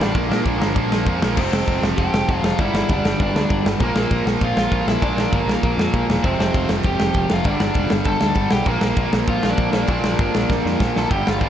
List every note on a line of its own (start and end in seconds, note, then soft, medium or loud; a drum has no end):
0.00 0.14 A1 medium
0.00 0.14 G2 medium
0.00 0.13 D3 medium
0.00 0.13 G3 medium
0.00 1.02 D4 medium
0.00 1.06 D5 loud
0.00 snare loud
0.13 0.30 A#1 loud
0.13 0.29 A#2 loud
0.13 0.28 F3 loud
0.13 0.28 A#3 loud
0.13 kick loud
0.13 crash medium
0.29 0.42 A#2 medium
0.29 0.45 A#2 medium
0.29 0.43 F3 medium
0.29 0.43 A#3 loud
0.29 snare loud
0.43 0.60 A#1 medium
0.43 0.58 A#2 medium
0.43 0.57 F3 medium
0.43 0.57 A#3 medium
0.43 kick loud
0.43 crash medium
0.58 0.75 G1 medium
0.58 0.72 A#2 medium
0.58 0.73 F3 medium
0.58 0.74 A#3 medium
0.58 snare loud
0.73 1.06 A#1 medium
0.73 0.90 A#2 medium
0.73 0.90 F3 loud
0.73 0.89 A#3 medium
0.73 kick loud
0.73 crash medium
0.90 1.04 A#2 medium
0.90 1.04 F3 medium
0.90 1.05 A#3 medium
0.90 snare loud
1.05 1.21 F2 loud
1.05 1.21 A#2 medium
1.05 1.21 F3 loud
1.05 1.20 A#3 loud
1.05 kick loud
1.05 crash medium
1.21 1.37 A#1 medium
1.21 1.36 A#2 medium
1.21 1.36 F3 medium
1.21 1.36 A#3 loud
1.21 snare loud
1.34 1.47 F1 loud
1.34 2.56 F2 medium
1.34 2.57 C3 medium
1.34 1.52 C4 medium
1.34 kick loud
1.34 crash loud
1.34 crash medium
1.38 2.58 F3 loud
1.38 1.53 C5 medium
1.52 1.61 F1 loud
1.52 1.81 C4 medium
1.52 1.82 C5 loud
1.52 snare loud
1.68 1.77 F1 medium
1.68 kick loud
1.68 crash medium
1.82 1.92 F1 loud
1.82 snare loud
1.97 2.08 F1 medium
1.97 2.40 G4 medium
1.97 2.45 G5 loud
1.97 kick loud
1.97 crash medium
2.13 2.22 F1 loud
2.13 snare loud
2.29 2.38 F1 loud
2.29 kick loud
2.29 crash medium
2.43 2.52 F1 loud
2.43 2.58 F4 medium
2.43 2.60 F5 medium
2.43 snare loud
2.58 2.68 G1 loud
2.58 3.80 G2 loud
2.58 3.80 D3 loud
2.58 2.87 E4 medium
2.58 2.88 E5 medium
2.58 kick loud
2.58 crash medium
2.63 3.82 G3 loud
2.73 2.82 G1 loud
2.73 snare loud
2.89 2.99 F1 medium
2.89 3.18 D4 medium
2.89 3.22 D5 medium
2.89 kick loud
2.89 crash medium
3.04 3.14 G1 loud
3.04 snare loud
3.20 3.29 G1 loud
3.20 3.63 D4 medium
3.20 3.64 D5 medium
3.20 kick loud
3.20 crash medium
3.35 3.44 D2 medium
3.35 snare loud
3.50 3.60 G1 loud
3.50 kick loud
3.50 crash medium
3.65 3.75 G1 loud
3.65 snare loud
3.80 3.90 A#1 loud
3.80 5.00 A#2 loud
3.80 5.03 F3 loud
3.80 3.95 A#3 medium
3.80 5.03 A#3 loud
3.80 3.97 A#4 loud
3.80 kick loud
3.80 crash medium
3.95 4.05 A#1 medium
3.95 4.25 A#3 medium
3.95 4.26 A#4 loud
3.95 snare loud
4.11 4.21 A#1 medium
4.11 kick loud
4.11 crash medium
4.26 4.35 A#1 loud
4.26 snare loud
4.41 4.51 A#1 medium
4.41 4.85 F4 medium
4.41 4.88 F5 loud
4.41 kick loud
4.41 crash medium
4.57 4.66 A#1 loud
4.57 snare loud
4.71 4.81 A#1 medium
4.71 kick loud
4.71 crash medium
4.87 4.96 A#1 medium
4.87 5.02 E4 medium
4.87 5.03 E5 loud
4.87 snare loud
5.01 5.12 A#1 medium
5.01 6.23 A#2 loud
5.01 6.24 F3 loud
5.01 6.24 A#3 loud
5.01 5.31 D4 medium
5.01 5.34 D5 medium
5.01 kick loud
5.01 crash medium
5.16 5.26 A#1 medium
5.16 snare loud
5.32 5.42 G1 medium
5.32 5.61 A#3 medium
5.32 5.62 A#4 medium
5.32 kick loud
5.32 crash medium
5.46 5.56 A#1 loud
5.46 snare loud
5.63 5.72 A#1 medium
5.63 6.06 A#3 medium
5.63 6.06 A#4 medium
5.63 kick loud
5.63 crash medium
5.77 5.87 F2 medium
5.77 snare loud
5.94 6.03 A#1 loud
5.94 kick loud
5.94 crash medium
6.09 6.19 E1 loud
6.09 snare loud
6.24 6.34 F1 loud
6.24 7.44 F2 medium
6.24 7.45 C3 loud
6.24 7.46 F3 loud
6.24 6.38 C4 medium
6.24 6.38 C5 medium
6.24 kick loud
6.24 crash medium
6.39 6.49 F1 loud
6.39 6.68 C4 medium
6.39 6.68 C5 loud
6.39 snare loud
6.54 6.64 F1 medium
6.54 kick loud
6.54 crash medium
6.69 6.79 F1 medium
6.69 snare loud
6.83 6.94 F1 medium
6.83 7.28 G4 medium
6.83 7.31 G5 medium
6.83 kick loud
6.83 crash medium
7.00 7.10 F1 loud
7.00 snare loud
7.14 7.25 F1 loud
7.14 kick loud
7.14 crash medium
7.30 7.41 F1 loud
7.30 7.46 F4 medium
7.30 7.46 F5 medium
7.30 snare loud
7.44 7.55 G1 loud
7.44 8.66 G2 loud
7.44 8.66 D3 loud
7.44 8.67 G3 loud
7.44 7.60 D4 medium
7.44 7.61 D5 medium
7.44 kick loud
7.44 crash medium
7.60 7.70 G1 medium
7.60 7.90 D4 medium
7.60 7.90 D5 loud
7.60 snare loud
7.74 7.85 F1 medium
7.74 kick loud
7.74 crash medium
7.90 8.01 G1 loud
7.90 snare loud
8.04 8.15 G1 loud
8.04 8.49 A4 medium
8.04 8.52 A5 loud
8.04 kick loud
8.04 crash medium
8.21 8.32 D2 loud
8.21 snare loud
8.35 8.46 G1 loud
8.35 kick loud
8.35 crash medium
8.51 8.61 B1 loud
8.51 8.66 G4 medium
8.51 8.66 G5 loud
8.51 snare loud
8.65 8.76 A#1 loud
8.65 9.86 A#2 medium
8.65 9.88 F3 loud
8.65 8.82 A#3 medium
8.65 9.89 A#3 loud
8.65 8.81 A#4 medium
8.65 kick loud
8.65 crash medium
8.81 8.92 A#1 medium
8.81 9.11 A#3 medium
8.81 9.11 A#4 loud
8.81 snare loud
8.96 9.07 A#1 medium
8.96 kick loud
8.96 crash medium
9.13 9.23 A#1 loud
9.13 snare loud
9.27 9.38 A#1 medium
9.27 9.50 F4 medium
9.27 9.50 F5 medium
9.27 kick loud
9.27 crash medium
9.43 9.53 A#1 loud
9.43 snare loud
9.50 9.72 D4 medium
9.50 9.71 D5 loud
9.57 9.68 A#1 loud
9.57 kick loud
9.57 crash medium
9.72 9.83 A#1 medium
9.72 10.76 D4 medium
9.72 10.76 D5 medium
9.72 snare loud
9.87 9.98 A#1 loud
9.87 11.09 A#2 loud
9.87 11.10 F3 loud
9.87 11.11 A#3 loud
9.87 kick loud
9.87 crash medium
10.04 10.13 A#1 medium
10.04 snare loud
10.19 10.29 G1 medium
10.19 kick loud
10.19 crash medium
10.35 10.44 A#1 medium
10.35 snare loud
10.50 10.60 A#1 medium
10.50 kick loud
10.50 snare medium
10.65 10.75 F2 loud
10.65 snare medium
10.80 10.90 A#1 loud
10.80 kick loud
10.80 snare medium
10.96 11.05 A#1 medium
10.96 11.11 A4 medium
10.96 11.11 A5 medium
10.96 snare medium
11.10 11.21 G1 loud
11.10 11.39 G2 medium
11.10 11.41 D3 loud
11.10 11.42 G3 loud
11.10 11.25 G4 medium
11.10 11.27 G5 medium
11.10 kick loud
11.10 crash medium
11.27 11.37 G1 medium
11.27 11.41 F4 medium
11.27 11.42 F5 medium
11.27 snare loud
11.40 11.49 G1 medium
11.40 11.49 G2 medium
11.40 11.49 D3 medium
11.40 11.49 G3 medium
11.40 11.49 F4 medium
11.40 11.49 F5 medium
11.40 kick loud
11.40 crash medium